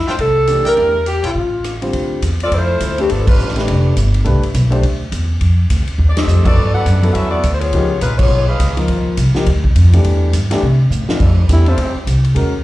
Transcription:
0.07 trumpet section F4 A4 E5 G5, saxophone section C5, muted upright bass stroke, snare
0.18 upright bass C2, saxophone section A4, kick, ride
0.47 grand piano E3 A3 D4 G4, cross-stick, hi-hat pedal, ride
0.65 trumpet section E4 A#4 D5 G5, saxophone section A#4, muted upright bass stroke, ride
0.76 upright bass E2, grand piano E3 A3 D4 G4, trumpet section E4 A#4 D5 G5, kick, ride
1.06 saxophone section G4, hi-hat pedal, ride
1.23 upright bass A#1, trumpet section F4 A4 C#5 G5, saxophone section F4, ride
1.35 upright bass A1, kick
1.64 cross-stick, hi-hat pedal, ride
1.82 grand piano D3 G3 C4 F4 C5, ride
1.93 upright bass D2, kick, ride
2.22 upright bass E2, kick, hi-hat pedal, ride
2.40 saxophone section C4 F4 A4 D5, ride
2.51 upright bass F2, saxophone section A3 E4 C5, kick, ride
2.55 saxophone section F4
2.80 upright bass D2, kick, hi-hat pedal, ride
2.98 saxophone section E3 A3 C4 G4, grand piano A3 D4 G4 B4, ride
3.10 upright bass G1, saxophone section F3 B3 D4 A4, kick, ride
3.27 saxophone section G3 D4 F4 B4, kick, crash
3.37 upright bass A1, hi-hat pedal
3.48 snare
3.56 grand piano A3 D4 G4 B4, snare, ride
3.68 upright bass F1, kick, ride
3.96 upright bass G1, kick, hi-hat pedal, ride
4.14 ride
4.24 upright bass C2, grand piano A3 D4 G4 B4, kick, ride
4.42 muted upright bass stroke, ride
4.54 upright bass B1, kick, hi-hat pedal, ride
4.70 grand piano A3 D4 G4 C5, ride
4.83 upright bass D2, kick, ride
5.12 upright bass E2, kick, hi-hat pedal, ride
5.41 upright bass F2, kick, ride
5.70 upright bass D2, kick, hi-hat pedal, ride
5.87 muted upright bass stroke, ride
5.98 upright bass D#2
6.09 saxophone section D5
6.17 saxophone section C4 G4 A4 D#5, snare, ride
6.27 upright bass F2, hi-hat pedal
6.45 grand piano F#3 B3 E4 A4, saxophone section B3 F#4 A4 D5, kick, crash
6.57 upright bass G2, kick
6.75 saxophone section D4 A4 B4 F#5
6.86 upright bass F#2, kick, hi-hat pedal, ride
7.02 grand piano F#3 B3 E4 A4, ride
7.13 upright bass E2, saxophone section C#4 F#4 A4 E5, kick, ride
7.31 saxophone section B3 F#4 A4 D5
7.43 upright bass D2, kick, hi-hat pedal, ride
7.54 saxophone section C5
7.59 saxophone section B3 F4 G#4 C#5, ride
7.73 upright bass C#2, grand piano F3 A#3 D#4 G4, kick, ride
8.01 upright bass A#1, saxophone section G#3 D#4 F4 B4, kick, hi-hat pedal, ride
8.18 saxophone section B3 F4 G#4 C#5, kick, crash
8.29 upright bass B1
8.48 saxophone section D#4 G#4 B4 F5
8.59 upright bass C#2, kick, hi-hat pedal, ride
8.77 grand piano F3 A#3 D#4 F4, ride
8.88 upright bass D#2, kick, ride
9.06 muted upright bass stroke
9.17 upright bass C2, kick, hi-hat pedal, ride
9.35 grand piano F3 A#3 D#4 G4, muted upright bass stroke, snare
9.46 upright bass D2, kick, ride
9.64 kick
9.75 upright bass F2, kick, hi-hat pedal, ride
9.93 grand piano E3 A3 D4 G4, ride
10.04 upright bass E2, kick, ride
10.33 upright bass G2, kick, hi-hat pedal, ride
10.50 grand piano E3 A3 D4 G4, muted upright bass stroke, snare, ride
10.63 upright bass C3, kick
10.90 upright bass A2, hi-hat pedal
11.08 grand piano F2 E3 A3 D4 F4, muted upright bass stroke, snare
11.19 upright bass F2, trombone section G3 E4 F4 A4, kick, crash
11.49 upright bass E2, grand piano E3 A3 D4 G4, kick, hi-hat pedal, ride
11.53 tenor saxophone E4
11.65 trombone section G3 E4 F4 A4, tenor saxophone C4, ride
11.77 upright bass D2, kick, ride
11.95 muted upright bass stroke
12.06 upright bass C2, kick, hi-hat pedal, ride
12.24 ride
12.35 upright bass D#2, grand piano G#3 C#4 F#4 A#4, kick, ride

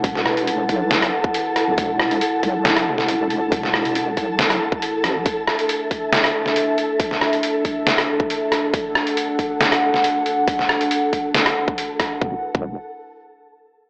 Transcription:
Already playing: wobble bass E1, analog synth pad E4 B4 F#5, synth texture A4 A5
0.04 kick, closed hi-hat
0.15 snare
0.26 cross-stick
0.37 wobble bass E1, closed hi-hat
0.47 closed hi-hat
0.69 wobble bass B1, kick, closed hi-hat
0.91 snare, closed hi-hat
1.02 cross-stick, closed hi-hat
1.24 kick
1.34 closed hi-hat
1.56 cross-stick, closed hi-hat
1.68 wobble bass D1
1.78 wobble bass E1, analog synth pad A4, kick, closed hi-hat
2.00 cross-stick
2.11 closed hi-hat
2.21 closed hi-hat
2.43 wobble bass B1, kick, closed hi-hat
2.65 snare, closed hi-hat
2.77 cross-stick, closed hi-hat
2.87 wobble bass E1
2.98 snare
3.08 closed hi-hat
3.30 closed hi-hat
3.52 kick, closed hi-hat
3.63 snare
3.74 cross-stick
3.85 wobble bass E1, closed hi-hat
3.95 closed hi-hat
4.17 wobble bass B1, kick, closed hi-hat
4.39 snare, closed hi-hat
4.50 cross-stick, closed hi-hat
4.72 kick
4.82 closed hi-hat
5.04 wobble bass A1, cross-stick, closed hi-hat
5.26 analog synth pad D4 E5, kick, closed hi-hat
5.47 cross-stick
5.59 closed hi-hat
5.69 closed hi-hat
5.91 kick, closed hi-hat
6.13 snare, closed hi-hat
6.24 cross-stick, closed hi-hat
6.46 snare
6.56 closed hi-hat
6.78 closed hi-hat
7.00 kick, closed hi-hat
7.11 snare
7.21 cross-stick
7.33 closed hi-hat
7.43 closed hi-hat
7.65 kick, closed hi-hat
7.87 snare, closed hi-hat
7.98 cross-stick, closed hi-hat
8.20 kick
8.30 closed hi-hat
8.52 cross-stick, closed hi-hat
8.73 analog synth pad F#5, kick, closed hi-hat
8.95 cross-stick
9.07 closed hi-hat
9.17 closed hi-hat
9.39 kick, closed hi-hat
9.61 snare, closed hi-hat
9.72 cross-stick, closed hi-hat
9.94 snare
10.04 closed hi-hat
10.26 closed hi-hat
10.48 kick, closed hi-hat
10.59 snare
10.69 cross-stick
10.81 closed hi-hat
10.91 closed hi-hat
11.13 kick, closed hi-hat
11.35 snare, closed hi-hat
11.46 cross-stick, closed hi-hat
11.68 kick
11.78 closed hi-hat
12.00 kick, cross-stick, closed hi-hat
12.22 wobble bass E1, kick
12.55 wobble bass E1, kick

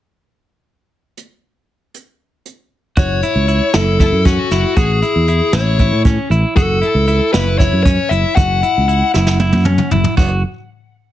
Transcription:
1.17 closed hi-hat
1.94 closed hi-hat
2.46 closed hi-hat
2.97 fingered electric bass F#1, clean electric guitar F#4, lead electric guitar C#5, kick, closed hi-hat
3.22 clean electric guitar E4, closed hi-hat
3.35 fingered electric bass C#2
3.48 clean electric guitar E4, closed hi-hat
3.74 fingered electric bass F#1, clean electric guitar E4, lead electric guitar A4, snare, closed hi-hat
4.00 clean electric guitar E4, kick, snare, closed hi-hat
4.12 fingered electric bass F#2
4.25 clean electric guitar C#4, lead electric guitar F#4, kick, closed hi-hat
4.51 fingered electric bass F#1, clean electric guitar E4, snare, closed hi-hat
4.77 fingered electric bass A1, clean electric guitar F#4, lead electric guitar G#4, kick, closed hi-hat
5.02 clean electric guitar E4, closed hi-hat
5.16 fingered electric bass E2
5.28 clean electric guitar E4, closed hi-hat
5.53 fingered electric bass A1, clean electric guitar E4, lead electric guitar C#5, snare, closed hi-hat
5.79 clean electric guitar E4, kick, closed hi-hat
5.92 fingered electric bass A2
6.05 clean electric guitar C#4, kick, closed hi-hat
6.30 fingered electric bass A1, clean electric guitar E4, closed hi-hat
6.56 fingered electric bass F#1, clean electric guitar F#4, lead electric guitar A4, kick, closed hi-hat
6.82 clean electric guitar E4, closed hi-hat
6.95 fingered electric bass C#2
7.08 clean electric guitar E4, closed hi-hat
7.33 fingered electric bass F#1, clean electric guitar E4, lead electric guitar B4, snare, closed hi-hat
7.58 clean electric guitar E4, lead electric guitar C#5, kick, snare, closed hi-hat
7.73 fingered electric bass F#2
7.83 clean electric guitar C#4, lead electric guitar C#5, kick, closed hi-hat
8.09 fingered electric bass F#1, clean electric guitar E4, lead electric guitar E5, closed hi-hat
8.36 fingered electric bass F#1, clean electric guitar F#4, lead electric guitar F#5, kick, closed hi-hat
8.63 clean electric guitar E4, closed hi-hat
8.77 fingered electric bass C#2
8.88 clean electric guitar E4, closed hi-hat
9.14 fingered electric bass F#1, clean electric guitar E4, snare
9.27 snare
9.40 clean electric guitar E4, high tom
9.52 fingered electric bass F#2, high tom
9.65 clean electric guitar C#4, mid tom
9.78 mid tom
9.91 fingered electric bass F#1, clean electric guitar E4, floor tom
10.04 floor tom
10.17 fingered electric bass F#1, clean electric guitar F#4, kick, crash

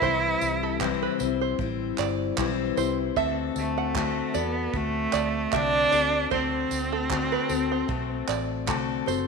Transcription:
Already playing: cello E4
0.02 fingered electric bass C2, steel-string acoustic guitar C3 E3 G3 C4 E4 C5, five-string banjo C5, kick
0.41 fingered electric bass C2, tambourine
0.63 five-string banjo A4
0.80 steel-string acoustic guitar C3 E3 G3 C4 E4 C5, kick, clap
1.02 five-string banjo B4
1.19 fingered electric bass C2, steel-string acoustic guitar G3 C4 E4 C5, tambourine
1.41 five-string banjo C5
1.59 fingered electric bass A1, steel-string acoustic guitar G3 C4 E4 C5, kick
1.98 fingered electric bass G1, five-string banjo D5, clap, tambourine
2.38 fingered electric bass B1, steel-string acoustic guitar E3 G3 C4 E4 C5, kick, clap
2.77 fingered electric bass C2, steel-string acoustic guitar G3 C4 E4 C5, five-string banjo C5, tambourine
3.16 fingered electric bass D2, steel-string acoustic guitar D3 A3 C4 F#4 A4, five-string banjo E5, kick
3.56 fingered electric bass D2, cello A3, tambourine
3.78 five-string banjo F#5
3.95 steel-string acoustic guitar D3 A3 C4 F#4 A4, kick, clap
4.34 fingered electric bass E2, cello B3, steel-string acoustic guitar F#4 A4, five-string banjo D5, tambourine
4.73 fingered electric bass D2, steel-string acoustic guitar A3 C4 F#4 A4, cello A3, kick
5.13 fingered electric bass D2, five-string banjo D5, clap, tambourine
5.52 fingered electric bass C2, steel-string acoustic guitar D3 A3 C4 F#4 A4, cello D4, five-string banjo E5, kick, clap
5.91 fingered electric bass D2, steel-string acoustic guitar C4 F#4 A4, five-string banjo D5, tambourine
6.30 fingered electric bass D2, steel-string acoustic guitar D3 A3 C4 F#4 A4, cello C4, five-string banjo C5, kick
6.71 fingered electric bass D2, tambourine
6.92 five-string banjo A4
7.10 steel-string acoustic guitar D3 A3 C4 F#4 A4, kick, clap
7.32 five-string banjo B4
7.49 fingered electric bass D2, steel-string acoustic guitar C4 F#4 A4, tambourine
7.72 five-string banjo C5
7.88 fingered electric bass B1, steel-string acoustic guitar A3 C4 F#4 A4, kick
8.28 fingered electric bass A1, five-string banjo D5, clap, tambourine
8.66 fingered electric bass C2, steel-string acoustic guitar D3 A3 C4 F#4 A4, kick, clap
9.06 fingered electric bass F#1, steel-string acoustic guitar C4 F#4 A4, five-string banjo C5, tambourine

